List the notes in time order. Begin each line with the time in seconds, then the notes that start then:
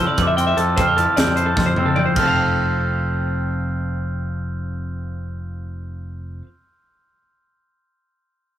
Already playing: F2 A4
0.00 E4 E6
0.07 D5
0.17 F2 F3, kick, closed hi-hat
0.22 D6
0.27 E5
0.37 C4 G5 C6, closed hi-hat
0.47 E5
0.57 F2 F3 A4 E6, closed hi-hat
0.76 F2 A4 C5, kick, closed hi-hat
0.82 F6
0.87 F4
0.97 F2 E4 A4, closed hi-hat
1.17 E2 A4 D5, snare, closed hi-hat
1.27 F2
1.36 E4 C5, closed hi-hat
1.46 A4
1.57 F2 F3 C6, kick, snare
1.66 C5
1.76 F2 C4 E6, mid tom
1.86 A4
1.96 F2 F3 D5 G6, floor tom
2.06 C5
2.16 F1 F2 F3 C4 A4 F6, kick, crash
2.23 A4 C5
2.27 F5